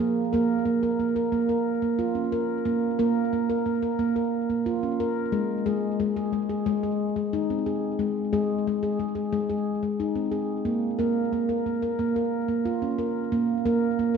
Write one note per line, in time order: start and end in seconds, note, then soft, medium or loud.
0.00 0.33 A#3 medium
0.33 0.64 A#3 medium
0.33 0.66 A#4 medium
0.65 0.83 A#3 medium
0.83 0.99 A#4 medium
1.00 1.16 A#3 medium
1.16 1.33 A#4 medium
1.32 1.49 A#3 medium
1.49 1.83 A#4 medium
1.82 1.99 A#3 medium
1.99 2.16 F4 medium
2.15 2.32 C#4 medium
2.32 2.66 A#4 medium
2.65 2.98 A#3 medium
2.99 3.32 A#3 medium
2.99 3.33 A#4 medium
3.33 3.50 A#3 medium
3.50 3.66 A#4 medium
3.66 3.83 A#3 medium
3.82 3.99 A#4 medium
3.99 4.48 A#3 medium
4.16 4.49 A#4 medium
4.50 4.66 A#3 medium
4.66 4.83 F4 medium
4.83 5.00 C#4 medium
5.00 5.33 A#4 medium
5.32 5.65 G#3 medium
5.66 5.99 G#3 medium
5.66 6.00 G#4 medium
6.00 6.16 G#3 medium
6.16 6.33 G#4 medium
6.33 6.50 G#3 medium
6.49 6.66 G#4 medium
6.66 7.15 G#3 medium
6.83 7.16 G#4 medium
7.16 7.33 G#3 medium
7.33 7.50 D#4 medium
7.50 7.66 C4 medium
7.66 7.99 G#4 medium
7.99 8.29 G#3 medium
8.33 8.66 G#3 medium
8.33 8.66 G#4 medium
8.67 8.83 G#3 medium
8.83 8.99 G#4 medium
8.99 9.16 G#3 medium
9.15 9.32 G#4 medium
9.33 9.82 G#3 medium
9.50 9.83 G#4 medium
9.83 9.99 G#3 medium
10.00 10.16 D#4 medium
10.15 10.32 C4 medium
10.32 10.65 G#4 medium
10.65 10.98 A#3 medium
10.99 11.31 A#3 medium
10.99 11.32 A#4 medium
11.33 11.49 A#3 medium
11.49 11.66 A#4 medium
11.66 11.83 A#3 medium
11.82 11.99 A#4 medium
11.99 12.16 A#3 medium
12.16 12.49 A#4 medium
12.48 12.65 A#3 medium
12.65 12.82 F4 medium
12.82 12.99 C#4 medium
12.98 13.32 A#4 medium
13.32 13.65 A#3 medium
13.66 13.98 A#3 medium
13.66 13.99 A#4 medium
13.99 14.16 A#3 medium